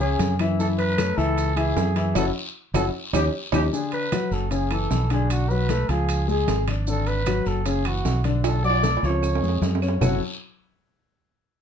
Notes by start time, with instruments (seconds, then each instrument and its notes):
Already playing: fingered electric bass C#2
0.00 grand piano C#3 C#4 C#5, trumpet G#4, high conga, maracas
0.19 fingered electric bass F#2, high conga, high timbale, low timbale, short guiro, maracas
0.39 grand piano E3 E4 E5, high timbale, short guiro, claves, maracas
0.59 grand piano E3 E4 E5, trumpet A4, high conga, long guiro, maracas
0.79 trumpet B4, high conga, high timbale, maracas
0.98 grand piano A3 A4 C#5, high conga, high timbale, low timbale, short guiro, claves, maracas
1.17 fingered electric bass C#2, grand piano E3 E4 E5, trumpet A4, high conga, short guiro, maracas
1.38 high conga, high timbale, long guiro, maracas
1.56 grand piano E3 E4 E5, trumpet G#4, high conga, high timbale, claves, maracas
1.76 fingered electric bass F#2, high conga, low timbale, short guiro, maracas
1.96 grand piano E3 E4 E5, high timbale, short guiro, maracas
2.15 fingered electric bass F#1, grand piano C#4 E4 F#4, trumpet A4, high conga, high timbale, long guiro, claves, maracas
2.74 fingered electric bass F#1, grand piano C#4 E4 F#4, trumpet A4, high conga, high timbale, long guiro, claves, maracas
3.13 fingered electric bass D#2, grand piano C#4 D#4 G4, trumpet G4, high conga, high timbale, long guiro, claves, maracas
3.52 fingered electric bass D#2, grand piano C#4 D#4 G4, trumpet G4, high conga, high timbale, long guiro, claves, maracas
3.73 grand piano D3 D4, trumpet G#4, high conga, long guiro, maracas
3.92 trumpet B4, high conga, high timbale, maracas
4.12 grand piano F#3 F#4, high conga, high timbale, low timbale, short guiro, claves, maracas
4.31 fingered electric bass F#1, trumpet A4, high conga, short guiro, maracas
4.51 grand piano C#3 C#4, trumpet G#4, high conga, high timbale, long guiro, maracas
4.71 grand piano E3 E4, trumpet A4, high conga, high timbale, claves, maracas
4.91 fingered electric bass B1, high conga, low timbale, short guiro, maracas
5.10 grand piano D3 D4, trumpet G#4, high timbale, short guiro, maracas
5.30 trumpet F#4, high conga, high timbale, long guiro, claves, maracas
5.50 grand piano F#3 F#4, trumpet B4, high conga, maracas
5.69 grand piano A3 A4, high conga, high timbale, low timbale, short guiro, maracas
5.89 fingered electric bass C#2, grand piano F3 F4, trumpet G#4, high timbale, short guiro, maracas
6.09 high conga, high timbale, long guiro, claves, maracas
6.28 grand piano G#3 G#4, trumpet G#4, high conga, maracas
6.48 fingered electric bass G#1, high conga, high timbale, low timbale, short guiro, maracas
6.67 grand piano D4 D5, high conga, high timbale, short guiro, claves, maracas
6.87 grand piano D3 D4, trumpet A4, high conga, long guiro, maracas
7.07 trumpet B4, high conga, high timbale, maracas
7.26 grand piano F#3 F#4, high conga, high timbale, low timbale, short guiro, claves, maracas
7.46 fingered electric bass F#1, trumpet A4, high conga, short guiro, maracas
7.66 grand piano C#3 C#4, trumpet G#4, high conga, high timbale, long guiro, maracas
7.85 grand piano E3 E4, trumpet F#4, high conga, high timbale, claves, maracas
8.05 fingered electric bass B1, high conga, low timbale, short guiro, maracas
8.24 grand piano D3 D4, high conga, high timbale, short guiro, maracas
8.44 trumpet A4, high conga, high timbale, long guiro, claves, maracas
8.64 grand piano F#3 F#4, trumpet D5, high conga, maracas
8.70 high timbale
8.83 grand piano A3 A4, high conga, low timbale, short guiro, maracas
8.97 high timbale
9.03 fingered electric bass C#2, grand piano F3 F4, trumpet C#5, high conga, short guiro, maracas
9.10 low timbale
9.22 high conga, low timbale, long guiro, claves, maracas
9.35 low timbale
9.42 fingered electric bass F2, grand piano G#3 G#4, high conga, maracas
9.49 low timbale
9.62 fingered electric bass F#2, high conga, low timbale, short guiro, maracas
9.75 low timbale
9.82 grand piano C#4 C#5, short guiro, claves, maracas
9.88 low timbale
10.01 fingered electric bass F#1, grand piano F#3 C#4 E4 F#4 A4 C#5, trumpet F#5, low conga, low timbale, long guiro, claves, maracas